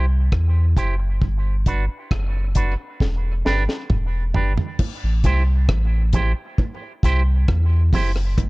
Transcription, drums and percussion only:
0.32 kick loud
0.32 cross-stick medium
0.77 kick medium
0.77 closed hi-hat medium
1.22 kick loud
1.66 kick medium
1.66 closed hi-hat medium
2.11 kick loud
2.11 cross-stick loud
2.55 kick medium
2.55 closed hi-hat medium
3.00 kick medium
3.00 snare soft
3.46 snare medium
3.69 snare medium
3.90 kick loud
3.90 mid tom medium
4.34 floor tom medium
4.58 floor tom medium
4.79 kick loud
4.79 crash loud
4.79 high bongo medium
5.24 kick medium
5.24 closed hi-hat medium
5.24 high bongo medium
5.69 kick loud
5.69 cross-stick loud
6.13 kick medium
6.13 closed hi-hat medium
6.13 high bongo soft
6.13 low bongo medium
6.58 kick loud
6.58 high bongo medium
7.03 kick loud
7.03 closed hi-hat medium
7.48 kick loud
7.48 cross-stick loud
7.48 high bongo medium
7.93 kick loud
7.93 open hi-hat medium
7.93 low bongo medium
8.16 cross-stick medium
8.38 kick loud
8.38 hi-hat pedal medium
8.38 high bongo medium

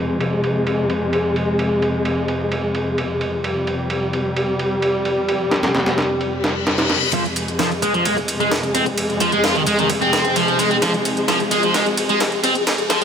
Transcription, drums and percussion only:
0.10 closed hi-hat soft
0.20 closed hi-hat soft
0.20 ride medium
0.33 closed hi-hat soft
0.44 closed hi-hat medium
0.44 ride medium
0.56 closed hi-hat soft
0.67 closed hi-hat soft
0.67 ride medium
0.90 closed hi-hat medium
0.90 ride medium
1.02 closed hi-hat soft
1.13 closed hi-hat soft
1.13 ride medium
1.25 closed hi-hat soft
1.36 closed hi-hat medium
1.36 ride medium
1.48 closed hi-hat soft
1.59 closed hi-hat soft
1.59 ride medium
1.71 closed hi-hat soft
1.82 closed hi-hat medium
1.82 ride medium
1.94 closed hi-hat soft
2.05 ride medium
2.17 closed hi-hat soft
2.28 closed hi-hat medium
2.28 ride medium
2.40 closed hi-hat soft
2.52 closed hi-hat soft
2.52 ride medium
2.64 closed hi-hat soft
2.75 closed hi-hat medium
2.75 ride medium
2.87 closed hi-hat soft
2.98 closed hi-hat soft
2.98 ride medium
3.10 closed hi-hat soft
3.21 closed hi-hat medium
3.21 ride medium
3.33 closed hi-hat soft
3.44 closed hi-hat soft
3.44 ride medium
3.56 closed hi-hat soft
3.67 closed hi-hat medium
3.67 ride medium
3.79 closed hi-hat soft
3.90 closed hi-hat soft
3.90 ride medium
4.02 closed hi-hat soft
4.13 closed hi-hat medium
4.13 ride medium
4.25 closed hi-hat soft
4.37 closed hi-hat soft
4.37 ride medium
4.48 closed hi-hat soft
4.59 closed hi-hat medium
4.59 ride medium
4.71 closed hi-hat soft
4.82 ride medium
4.94 closed hi-hat soft
5.05 closed hi-hat medium
5.05 ride medium
5.17 closed hi-hat soft
5.29 closed hi-hat soft
5.29 ride medium
5.41 closed hi-hat soft
5.51 snare medium
5.51 closed hi-hat medium
5.51 ride medium
5.63 snare medium
5.63 ride medium
5.75 snare loud
5.75 ride medium
5.86 snare loud
5.86 ride medium
5.98 snare medium
5.98 closed hi-hat medium
5.98 ride medium
6.10 closed hi-hat soft
6.21 closed hi-hat soft
6.21 ride medium
6.33 closed hi-hat soft
6.44 snare loud
6.44 closed hi-hat medium
6.44 ride medium
6.56 closed hi-hat soft
6.67 snare medium
6.67 closed hi-hat soft
6.67 ride medium
6.78 snare loud
6.78 ride medium
6.90 snare loud
6.90 closed hi-hat medium
6.90 ride medium
7.02 closed hi-hat soft
7.13 kick loud
7.13 closed hi-hat soft
7.13 ride medium
7.26 closed hi-hat soft
7.36 closed hi-hat medium
7.36 ride medium
7.48 closed hi-hat soft
7.59 snare loud
7.59 closed hi-hat soft
7.59 ride medium
7.72 closed hi-hat soft
7.82 kick medium
7.82 closed hi-hat medium
7.82 ride medium
7.94 closed hi-hat soft
8.05 closed hi-hat soft
8.05 ride medium
8.17 kick medium
8.17 closed hi-hat soft
8.28 closed hi-hat medium
8.28 ride medium
8.40 closed hi-hat soft
8.51 snare loud
8.51 closed hi-hat soft
8.51 ride medium
8.63 closed hi-hat soft
8.75 closed hi-hat medium
8.75 ride medium
8.86 kick medium
8.86 closed hi-hat soft
8.98 closed hi-hat soft
8.98 ride medium
9.10 closed hi-hat soft
9.20 kick medium
9.20 closed hi-hat medium
9.20 ride medium
9.32 closed hi-hat soft
9.44 snare loud
9.44 closed hi-hat soft
9.44 ride medium
9.55 kick medium
9.55 closed hi-hat soft
9.67 closed hi-hat medium
9.67 ride medium
9.79 closed hi-hat soft
9.90 kick loud
9.90 closed hi-hat soft
9.90 ride medium
10.02 closed hi-hat soft
10.13 snare loud
10.13 closed hi-hat medium
10.13 ride medium
10.25 kick medium
10.25 closed hi-hat soft
10.36 closed hi-hat soft
10.36 ride medium
10.48 closed hi-hat soft
10.59 closed hi-hat medium
10.59 ride medium
10.71 closed hi-hat soft
10.82 snare soft
10.82 closed hi-hat soft
10.82 ride medium
10.94 closed hi-hat soft
11.05 closed hi-hat medium
11.05 ride medium
11.17 closed hi-hat soft
11.28 snare medium
11.28 closed hi-hat soft
11.28 ride medium
11.40 closed hi-hat soft
11.51 closed hi-hat medium
11.51 ride medium
11.63 closed hi-hat soft
11.74 snare medium
11.74 closed hi-hat soft
11.74 ride medium
11.86 closed hi-hat soft
11.97 closed hi-hat medium
11.97 ride medium
12.09 closed hi-hat soft
12.20 snare medium
12.20 closed hi-hat soft
12.20 ride medium
12.32 closed hi-hat soft
12.44 closed hi-hat medium
12.44 ride medium
12.55 closed hi-hat soft
12.67 snare medium
12.67 closed hi-hat soft
12.67 ride medium
12.78 closed hi-hat soft
12.90 snare medium
12.90 closed hi-hat medium
12.90 ride medium

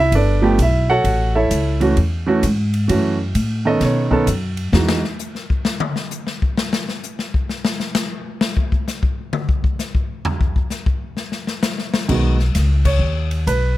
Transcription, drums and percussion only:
0.12 kick soft
0.12 ride medium
0.58 kick soft
0.58 hi-hat pedal soft
0.58 ride medium
1.04 kick soft
1.04 ride medium
1.51 kick soft
1.51 hi-hat pedal medium
1.51 ride medium
1.81 ride soft
1.97 kick soft
1.97 ride medium
2.43 kick soft
2.43 hi-hat pedal medium
2.43 ride medium
2.74 ride soft
2.89 kick soft
2.89 ride medium
3.35 kick soft
3.35 hi-hat pedal medium
3.35 ride medium
3.81 kick soft
3.81 snare soft
3.81 ride medium
4.11 kick medium
4.27 kick soft
4.27 hi-hat pedal medium
4.27 ride medium
4.57 ride soft
4.73 snare loud
4.89 snare loud
5.04 snare soft
5.19 hi-hat pedal medium
5.35 snare soft
5.50 kick medium
5.65 snare medium
5.80 high tom loud
5.96 snare medium
6.11 hi-hat pedal medium
6.27 snare medium
6.42 kick medium
6.57 snare medium
6.73 snare medium
6.88 snare soft
7.03 hi-hat pedal medium
7.19 snare soft
7.34 kick medium
7.49 snare soft
7.65 snare loud
7.80 snare medium
7.95 snare loud
7.95 hi-hat pedal medium
8.41 snare loud
8.57 kick medium
8.72 kick medium
8.88 snare soft
8.88 hi-hat pedal medium
9.03 kick medium
9.33 high tom medium
9.49 kick medium
9.64 kick medium
9.79 snare soft
9.79 hi-hat pedal medium
9.95 kick medium
10.25 floor tom loud
10.41 kick medium
10.56 kick medium
10.70 snare soft
10.70 hi-hat pedal medium
10.86 kick medium
11.17 snare soft
11.32 snare soft
11.47 snare medium
11.63 snare loud
11.63 hi-hat pedal medium
11.78 snare soft
11.94 snare loud
12.09 kick medium
12.09 crash medium
12.39 snare soft
12.55 kick soft
12.55 snare soft
12.55 hi-hat pedal medium
12.55 ride medium
12.85 kick medium
12.85 crash medium
13.31 ride soft
13.47 kick soft
13.47 hi-hat pedal medium
13.47 ride medium

